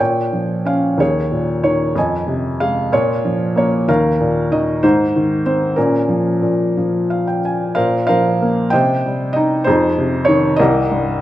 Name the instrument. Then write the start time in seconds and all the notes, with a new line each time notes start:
felt piano
0.00 A#2 C#5 G5
0.33 F3
0.65 C#4 F5
0.98 D#2 G#4 C#5
1.32 A#2
1.64 D#3 C#5
1.96 F2 D#5 G#5
2.27 C3
2.60 G#3 F5
2.92 A#2 F4 C#5
3.25 F3
3.56 A#3 C#5
3.88 D#2 A#4 F5
4.21 A#2
4.51 D#3 D#5
4.83 G#2 D#4 C5
5.16 D#3
5.46 C4 C5
5.76 A#2 C#4 A#4
6.09 F3
6.42 A#2
6.77 F3
7.10 F5
7.27 G5
7.45 G#5
7.75 A#2 A#4 C5 F5
8.07 F3 A#4 C5 F5
8.42 A#3
8.70 C3 C5 D#5 G5
9.06 G3
9.33 D#4 D#5
9.64 F2 D#4 G#4 C5
9.98 C3
10.25 D#3 C#5
10.56 C2 G4 A#4 D#5
10.91 G2